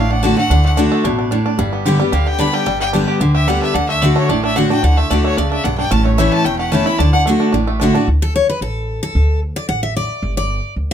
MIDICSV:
0, 0, Header, 1, 5, 480
1, 0, Start_track
1, 0, Key_signature, 2, "major"
1, 0, Tempo, 269906
1, 903, Time_signature, 4, 2, 24, 8
1, 19447, End_track
2, 0, Start_track
2, 0, Title_t, "Fiddle"
2, 0, Program_c, 0, 110
2, 0, Note_on_c, 0, 77, 85
2, 191, Note_on_c, 0, 78, 94
2, 218, Note_off_c, 0, 77, 0
2, 412, Note_on_c, 0, 81, 106
2, 438, Note_off_c, 0, 78, 0
2, 671, Note_off_c, 0, 81, 0
2, 680, Note_on_c, 0, 78, 107
2, 1124, Note_off_c, 0, 78, 0
2, 1156, Note_on_c, 0, 78, 99
2, 1367, Note_off_c, 0, 78, 0
2, 3785, Note_on_c, 0, 77, 86
2, 4044, Note_on_c, 0, 79, 98
2, 4071, Note_off_c, 0, 77, 0
2, 4265, Note_on_c, 0, 83, 104
2, 4292, Note_off_c, 0, 79, 0
2, 4518, Note_on_c, 0, 79, 105
2, 4545, Note_off_c, 0, 83, 0
2, 4977, Note_off_c, 0, 79, 0
2, 4988, Note_on_c, 0, 79, 110
2, 5126, Note_off_c, 0, 79, 0
2, 5949, Note_on_c, 0, 76, 94
2, 6187, Note_on_c, 0, 78, 106
2, 6214, Note_off_c, 0, 76, 0
2, 6434, Note_off_c, 0, 78, 0
2, 6445, Note_on_c, 0, 76, 95
2, 6667, Note_on_c, 0, 78, 108
2, 6694, Note_off_c, 0, 76, 0
2, 6906, Note_off_c, 0, 78, 0
2, 6917, Note_on_c, 0, 76, 99
2, 7148, Note_on_c, 0, 74, 86
2, 7175, Note_off_c, 0, 76, 0
2, 7390, Note_off_c, 0, 74, 0
2, 7400, Note_on_c, 0, 73, 99
2, 7641, Note_on_c, 0, 74, 86
2, 7668, Note_off_c, 0, 73, 0
2, 7881, Note_off_c, 0, 74, 0
2, 7892, Note_on_c, 0, 76, 103
2, 8113, Note_on_c, 0, 78, 92
2, 8140, Note_off_c, 0, 76, 0
2, 8365, Note_off_c, 0, 78, 0
2, 8372, Note_on_c, 0, 79, 111
2, 8603, Note_on_c, 0, 78, 98
2, 8630, Note_off_c, 0, 79, 0
2, 8841, Note_on_c, 0, 76, 101
2, 8868, Note_off_c, 0, 78, 0
2, 9074, Note_on_c, 0, 74, 86
2, 9101, Note_off_c, 0, 76, 0
2, 9313, Note_off_c, 0, 74, 0
2, 9324, Note_on_c, 0, 73, 101
2, 9559, Note_on_c, 0, 74, 85
2, 9586, Note_off_c, 0, 73, 0
2, 9790, Note_off_c, 0, 74, 0
2, 9801, Note_on_c, 0, 76, 100
2, 10030, Note_on_c, 0, 78, 90
2, 10057, Note_off_c, 0, 76, 0
2, 10264, Note_off_c, 0, 78, 0
2, 10275, Note_on_c, 0, 79, 102
2, 10516, Note_on_c, 0, 81, 104
2, 10543, Note_off_c, 0, 79, 0
2, 10752, Note_off_c, 0, 81, 0
2, 10763, Note_on_c, 0, 73, 56
2, 10983, Note_on_c, 0, 76, 90
2, 11010, Note_off_c, 0, 73, 0
2, 11231, Note_on_c, 0, 81, 121
2, 11258, Note_off_c, 0, 76, 0
2, 11466, Note_on_c, 0, 79, 99
2, 11493, Note_off_c, 0, 81, 0
2, 11702, Note_off_c, 0, 79, 0
2, 11713, Note_on_c, 0, 78, 89
2, 11945, Note_on_c, 0, 81, 90
2, 11971, Note_off_c, 0, 78, 0
2, 12200, Note_on_c, 0, 83, 109
2, 12227, Note_off_c, 0, 81, 0
2, 12420, Note_on_c, 0, 81, 95
2, 12447, Note_off_c, 0, 83, 0
2, 12666, Note_off_c, 0, 81, 0
2, 12677, Note_on_c, 0, 78, 118
2, 12818, Note_off_c, 0, 78, 0
2, 19447, End_track
3, 0, Start_track
3, 0, Title_t, "Five-string banjo"
3, 0, Program_c, 1, 105
3, 0, Note_on_c, 1, 57, 74
3, 0, Note_on_c, 1, 62, 64
3, 187, Note_off_c, 1, 62, 0
3, 187, Note_on_c, 1, 62, 63
3, 371, Note_off_c, 1, 57, 0
3, 417, Note_off_c, 1, 62, 0
3, 417, Note_on_c, 1, 62, 60
3, 666, Note_on_c, 1, 57, 60
3, 895, Note_off_c, 1, 62, 0
3, 895, Note_on_c, 1, 62, 68
3, 1129, Note_off_c, 1, 57, 0
3, 1151, Note_on_c, 1, 57, 60
3, 1373, Note_off_c, 1, 62, 0
3, 1373, Note_on_c, 1, 62, 66
3, 1609, Note_off_c, 1, 57, 0
3, 1630, Note_on_c, 1, 57, 75
3, 1858, Note_off_c, 1, 62, 0
3, 1858, Note_on_c, 1, 62, 71
3, 2108, Note_off_c, 1, 62, 0
3, 2108, Note_on_c, 1, 62, 60
3, 2293, Note_off_c, 1, 57, 0
3, 2331, Note_off_c, 1, 62, 0
3, 2331, Note_on_c, 1, 62, 62
3, 2591, Note_off_c, 1, 62, 0
3, 2591, Note_on_c, 1, 62, 62
3, 2821, Note_on_c, 1, 55, 78
3, 3071, Note_on_c, 1, 59, 65
3, 3298, Note_on_c, 1, 67, 59
3, 3503, Note_off_c, 1, 55, 0
3, 3549, Note_on_c, 1, 55, 82
3, 3734, Note_off_c, 1, 59, 0
3, 3755, Note_off_c, 1, 67, 0
3, 3776, Note_on_c, 1, 67, 69
3, 4028, Note_on_c, 1, 59, 60
3, 4213, Note_off_c, 1, 55, 0
3, 4250, Note_off_c, 1, 62, 0
3, 4257, Note_on_c, 1, 62, 65
3, 4461, Note_off_c, 1, 67, 0
3, 4508, Note_on_c, 1, 55, 61
3, 4692, Note_off_c, 1, 59, 0
3, 4719, Note_off_c, 1, 55, 0
3, 4740, Note_on_c, 1, 55, 87
3, 4987, Note_on_c, 1, 59, 62
3, 5208, Note_off_c, 1, 62, 0
3, 5215, Note_on_c, 1, 62, 61
3, 5424, Note_off_c, 1, 55, 0
3, 5473, Note_on_c, 1, 67, 62
3, 5653, Note_off_c, 1, 59, 0
3, 5697, Note_on_c, 1, 59, 65
3, 5929, Note_off_c, 1, 67, 0
3, 5950, Note_on_c, 1, 67, 59
3, 6185, Note_on_c, 1, 55, 71
3, 6384, Note_off_c, 1, 59, 0
3, 6433, Note_off_c, 1, 62, 0
3, 6440, Note_on_c, 1, 62, 58
3, 6616, Note_off_c, 1, 67, 0
3, 6656, Note_off_c, 1, 62, 0
3, 6656, Note_on_c, 1, 62, 69
3, 6665, Note_off_c, 1, 55, 0
3, 6918, Note_on_c, 1, 57, 59
3, 7128, Note_off_c, 1, 62, 0
3, 7149, Note_on_c, 1, 62, 62
3, 7389, Note_off_c, 1, 57, 0
3, 7396, Note_on_c, 1, 57, 79
3, 7608, Note_off_c, 1, 62, 0
3, 7630, Note_on_c, 1, 62, 68
3, 7867, Note_off_c, 1, 62, 0
3, 7889, Note_on_c, 1, 62, 66
3, 8088, Note_off_c, 1, 62, 0
3, 8109, Note_on_c, 1, 62, 59
3, 8343, Note_off_c, 1, 62, 0
3, 8365, Note_on_c, 1, 62, 65
3, 8567, Note_off_c, 1, 62, 0
3, 8588, Note_on_c, 1, 62, 66
3, 8840, Note_off_c, 1, 57, 0
3, 8847, Note_on_c, 1, 57, 63
3, 9058, Note_off_c, 1, 62, 0
3, 9080, Note_on_c, 1, 62, 61
3, 9320, Note_off_c, 1, 57, 0
3, 9327, Note_on_c, 1, 57, 77
3, 9537, Note_off_c, 1, 62, 0
3, 9558, Note_on_c, 1, 62, 69
3, 9791, Note_off_c, 1, 62, 0
3, 9812, Note_on_c, 1, 62, 60
3, 10015, Note_off_c, 1, 62, 0
3, 10036, Note_on_c, 1, 62, 64
3, 10267, Note_off_c, 1, 62, 0
3, 10288, Note_on_c, 1, 62, 58
3, 10509, Note_on_c, 1, 61, 74
3, 10515, Note_off_c, 1, 62, 0
3, 10760, Note_off_c, 1, 57, 0
3, 10767, Note_on_c, 1, 57, 65
3, 10994, Note_on_c, 1, 64, 61
3, 11197, Note_off_c, 1, 61, 0
3, 11237, Note_off_c, 1, 57, 0
3, 11244, Note_on_c, 1, 57, 81
3, 11462, Note_on_c, 1, 61, 72
3, 11680, Note_off_c, 1, 64, 0
3, 11727, Note_on_c, 1, 67, 60
3, 11932, Note_off_c, 1, 61, 0
3, 11953, Note_on_c, 1, 61, 64
3, 12199, Note_on_c, 1, 64, 67
3, 12392, Note_off_c, 1, 67, 0
3, 12422, Note_off_c, 1, 64, 0
3, 12430, Note_on_c, 1, 62, 71
3, 12437, Note_off_c, 1, 61, 0
3, 12662, Note_off_c, 1, 62, 0
3, 12683, Note_on_c, 1, 62, 61
3, 12900, Note_off_c, 1, 57, 0
3, 12908, Note_on_c, 1, 57, 62
3, 13138, Note_off_c, 1, 62, 0
3, 13159, Note_on_c, 1, 62, 64
3, 13361, Note_off_c, 1, 62, 0
3, 13383, Note_on_c, 1, 62, 65
3, 13597, Note_off_c, 1, 57, 0
3, 13648, Note_on_c, 1, 57, 66
3, 13845, Note_off_c, 1, 62, 0
3, 13866, Note_on_c, 1, 62, 61
3, 14110, Note_off_c, 1, 62, 0
3, 14131, Note_on_c, 1, 62, 61
3, 14312, Note_off_c, 1, 57, 0
3, 14359, Note_off_c, 1, 62, 0
3, 19447, End_track
4, 0, Start_track
4, 0, Title_t, "Steel-string acoustic guitar"
4, 0, Program_c, 2, 25
4, 0, Note_on_c, 2, 45, 82
4, 404, Note_on_c, 2, 50, 88
4, 423, Note_on_c, 2, 57, 93
4, 430, Note_on_c, 2, 62, 102
4, 449, Note_on_c, 2, 66, 96
4, 631, Note_off_c, 2, 66, 0
4, 652, Note_on_c, 2, 66, 64
4, 657, Note_off_c, 2, 50, 0
4, 666, Note_off_c, 2, 57, 0
4, 670, Note_off_c, 2, 62, 0
4, 698, Note_on_c, 2, 62, 49
4, 853, Note_off_c, 2, 45, 0
4, 882, Note_off_c, 2, 66, 0
4, 905, Note_off_c, 2, 62, 0
4, 906, Note_on_c, 2, 50, 90
4, 1352, Note_off_c, 2, 50, 0
4, 1374, Note_on_c, 2, 50, 100
4, 1386, Note_on_c, 2, 57, 93
4, 1398, Note_on_c, 2, 62, 98
4, 1411, Note_on_c, 2, 66, 100
4, 1835, Note_off_c, 2, 50, 0
4, 1841, Note_off_c, 2, 57, 0
4, 1847, Note_off_c, 2, 62, 0
4, 1853, Note_off_c, 2, 66, 0
4, 1866, Note_on_c, 2, 47, 92
4, 2320, Note_off_c, 2, 47, 0
4, 2346, Note_on_c, 2, 45, 92
4, 2800, Note_off_c, 2, 45, 0
4, 2821, Note_on_c, 2, 43, 95
4, 3305, Note_on_c, 2, 50, 98
4, 3317, Note_on_c, 2, 55, 101
4, 3337, Note_on_c, 2, 59, 96
4, 3347, Note_on_c, 2, 67, 97
4, 3528, Note_off_c, 2, 67, 0
4, 3546, Note_off_c, 2, 50, 0
4, 3549, Note_on_c, 2, 67, 54
4, 3552, Note_off_c, 2, 55, 0
4, 3562, Note_off_c, 2, 59, 0
4, 3587, Note_on_c, 2, 59, 49
4, 3735, Note_off_c, 2, 43, 0
4, 3769, Note_off_c, 2, 67, 0
4, 3785, Note_on_c, 2, 50, 86
4, 3788, Note_off_c, 2, 59, 0
4, 4221, Note_off_c, 2, 50, 0
4, 4242, Note_on_c, 2, 50, 93
4, 4259, Note_on_c, 2, 55, 89
4, 4274, Note_on_c, 2, 59, 90
4, 4284, Note_on_c, 2, 67, 104
4, 4709, Note_off_c, 2, 50, 0
4, 4717, Note_off_c, 2, 55, 0
4, 4725, Note_off_c, 2, 59, 0
4, 4730, Note_off_c, 2, 67, 0
4, 4735, Note_on_c, 2, 43, 91
4, 5218, Note_on_c, 2, 50, 82
4, 5233, Note_on_c, 2, 55, 87
4, 5248, Note_on_c, 2, 59, 99
4, 5264, Note_on_c, 2, 67, 97
4, 5654, Note_off_c, 2, 43, 0
4, 5678, Note_off_c, 2, 50, 0
4, 5686, Note_off_c, 2, 55, 0
4, 5693, Note_off_c, 2, 59, 0
4, 5700, Note_off_c, 2, 67, 0
4, 5707, Note_on_c, 2, 50, 86
4, 6167, Note_off_c, 2, 50, 0
4, 6188, Note_on_c, 2, 50, 94
4, 6201, Note_on_c, 2, 55, 89
4, 6215, Note_on_c, 2, 59, 98
4, 6221, Note_on_c, 2, 67, 95
4, 6644, Note_off_c, 2, 50, 0
4, 6651, Note_off_c, 2, 55, 0
4, 6658, Note_off_c, 2, 59, 0
4, 6660, Note_off_c, 2, 67, 0
4, 6676, Note_on_c, 2, 50, 90
4, 7131, Note_off_c, 2, 50, 0
4, 7153, Note_on_c, 2, 50, 94
4, 7169, Note_on_c, 2, 57, 88
4, 7181, Note_on_c, 2, 62, 87
4, 7193, Note_on_c, 2, 66, 104
4, 7608, Note_off_c, 2, 50, 0
4, 7616, Note_off_c, 2, 57, 0
4, 7622, Note_off_c, 2, 62, 0
4, 7628, Note_off_c, 2, 66, 0
4, 7640, Note_on_c, 2, 45, 87
4, 8107, Note_on_c, 2, 50, 88
4, 8125, Note_on_c, 2, 57, 90
4, 8138, Note_on_c, 2, 62, 102
4, 8150, Note_on_c, 2, 66, 103
4, 8352, Note_off_c, 2, 50, 0
4, 8353, Note_off_c, 2, 66, 0
4, 8361, Note_off_c, 2, 57, 0
4, 8367, Note_off_c, 2, 62, 0
4, 8374, Note_on_c, 2, 66, 61
4, 8416, Note_on_c, 2, 62, 55
4, 8551, Note_off_c, 2, 45, 0
4, 8587, Note_off_c, 2, 66, 0
4, 8604, Note_on_c, 2, 50, 89
4, 8607, Note_off_c, 2, 62, 0
4, 9061, Note_off_c, 2, 50, 0
4, 9082, Note_on_c, 2, 50, 94
4, 9089, Note_on_c, 2, 57, 98
4, 9103, Note_on_c, 2, 62, 97
4, 9118, Note_on_c, 2, 66, 93
4, 9535, Note_off_c, 2, 50, 0
4, 9539, Note_off_c, 2, 57, 0
4, 9546, Note_off_c, 2, 62, 0
4, 9553, Note_off_c, 2, 66, 0
4, 9571, Note_on_c, 2, 49, 89
4, 10021, Note_off_c, 2, 49, 0
4, 10047, Note_on_c, 2, 43, 94
4, 10499, Note_off_c, 2, 43, 0
4, 10517, Note_on_c, 2, 45, 94
4, 10993, Note_on_c, 2, 52, 99
4, 11011, Note_on_c, 2, 57, 98
4, 11025, Note_on_c, 2, 61, 108
4, 11036, Note_on_c, 2, 64, 88
4, 11433, Note_off_c, 2, 45, 0
4, 11453, Note_off_c, 2, 52, 0
4, 11462, Note_off_c, 2, 57, 0
4, 11469, Note_off_c, 2, 61, 0
4, 11475, Note_off_c, 2, 64, 0
4, 11486, Note_on_c, 2, 40, 87
4, 11946, Note_on_c, 2, 52, 95
4, 11969, Note_on_c, 2, 57, 94
4, 11977, Note_on_c, 2, 61, 93
4, 11993, Note_on_c, 2, 64, 103
4, 12194, Note_off_c, 2, 64, 0
4, 12196, Note_off_c, 2, 52, 0
4, 12207, Note_off_c, 2, 57, 0
4, 12212, Note_off_c, 2, 61, 0
4, 12215, Note_on_c, 2, 64, 69
4, 12255, Note_on_c, 2, 61, 50
4, 12398, Note_off_c, 2, 40, 0
4, 12432, Note_off_c, 2, 64, 0
4, 12452, Note_off_c, 2, 61, 0
4, 12453, Note_on_c, 2, 50, 94
4, 12907, Note_off_c, 2, 50, 0
4, 12929, Note_on_c, 2, 50, 90
4, 12937, Note_on_c, 2, 57, 104
4, 12957, Note_on_c, 2, 62, 97
4, 12967, Note_on_c, 2, 66, 103
4, 13382, Note_off_c, 2, 50, 0
4, 13386, Note_off_c, 2, 57, 0
4, 13396, Note_off_c, 2, 62, 0
4, 13401, Note_off_c, 2, 66, 0
4, 13409, Note_on_c, 2, 45, 86
4, 13893, Note_on_c, 2, 50, 96
4, 13904, Note_on_c, 2, 57, 97
4, 13918, Note_on_c, 2, 62, 105
4, 13932, Note_on_c, 2, 66, 96
4, 14118, Note_off_c, 2, 66, 0
4, 14130, Note_off_c, 2, 50, 0
4, 14135, Note_off_c, 2, 57, 0
4, 14139, Note_on_c, 2, 66, 61
4, 14142, Note_off_c, 2, 62, 0
4, 14177, Note_on_c, 2, 62, 54
4, 14319, Note_off_c, 2, 45, 0
4, 14354, Note_off_c, 2, 66, 0
4, 14373, Note_off_c, 2, 62, 0
4, 14622, Note_on_c, 2, 69, 85
4, 14837, Note_off_c, 2, 69, 0
4, 14860, Note_on_c, 2, 73, 90
4, 15095, Note_off_c, 2, 73, 0
4, 15107, Note_on_c, 2, 71, 79
4, 15319, Note_off_c, 2, 71, 0
4, 15332, Note_on_c, 2, 69, 70
4, 16006, Note_off_c, 2, 69, 0
4, 16054, Note_on_c, 2, 69, 85
4, 16707, Note_off_c, 2, 69, 0
4, 17004, Note_on_c, 2, 74, 87
4, 17219, Note_off_c, 2, 74, 0
4, 17226, Note_on_c, 2, 78, 99
4, 17471, Note_off_c, 2, 78, 0
4, 17478, Note_on_c, 2, 76, 85
4, 17700, Note_off_c, 2, 76, 0
4, 17722, Note_on_c, 2, 74, 83
4, 18395, Note_off_c, 2, 74, 0
4, 18446, Note_on_c, 2, 74, 90
4, 19096, Note_off_c, 2, 74, 0
4, 19447, End_track
5, 0, Start_track
5, 0, Title_t, "Upright bass"
5, 0, Program_c, 3, 32
5, 0, Note_on_c, 3, 33, 77
5, 581, Note_off_c, 3, 33, 0
5, 891, Note_on_c, 3, 38, 98
5, 1541, Note_off_c, 3, 38, 0
5, 1859, Note_on_c, 3, 33, 81
5, 2506, Note_off_c, 3, 33, 0
5, 2824, Note_on_c, 3, 31, 95
5, 3469, Note_off_c, 3, 31, 0
5, 3780, Note_on_c, 3, 38, 78
5, 4427, Note_off_c, 3, 38, 0
5, 4742, Note_on_c, 3, 31, 87
5, 5389, Note_off_c, 3, 31, 0
5, 5702, Note_on_c, 3, 38, 77
5, 6350, Note_off_c, 3, 38, 0
5, 6662, Note_on_c, 3, 38, 94
5, 7311, Note_off_c, 3, 38, 0
5, 7631, Note_on_c, 3, 33, 71
5, 8278, Note_off_c, 3, 33, 0
5, 8596, Note_on_c, 3, 38, 93
5, 8918, Note_off_c, 3, 38, 0
5, 9080, Note_on_c, 3, 38, 79
5, 9486, Note_off_c, 3, 38, 0
5, 9559, Note_on_c, 3, 37, 78
5, 9965, Note_off_c, 3, 37, 0
5, 10038, Note_on_c, 3, 35, 87
5, 10445, Note_off_c, 3, 35, 0
5, 10520, Note_on_c, 3, 33, 91
5, 11167, Note_off_c, 3, 33, 0
5, 11475, Note_on_c, 3, 28, 83
5, 12124, Note_off_c, 3, 28, 0
5, 12438, Note_on_c, 3, 38, 95
5, 13085, Note_off_c, 3, 38, 0
5, 13397, Note_on_c, 3, 33, 79
5, 14045, Note_off_c, 3, 33, 0
5, 14362, Note_on_c, 3, 38, 90
5, 15007, Note_off_c, 3, 38, 0
5, 15315, Note_on_c, 3, 33, 83
5, 15961, Note_off_c, 3, 33, 0
5, 16274, Note_on_c, 3, 38, 100
5, 16919, Note_off_c, 3, 38, 0
5, 17229, Note_on_c, 3, 33, 82
5, 17874, Note_off_c, 3, 33, 0
5, 18184, Note_on_c, 3, 31, 96
5, 18828, Note_off_c, 3, 31, 0
5, 19142, Note_on_c, 3, 38, 75
5, 19447, Note_off_c, 3, 38, 0
5, 19447, End_track
0, 0, End_of_file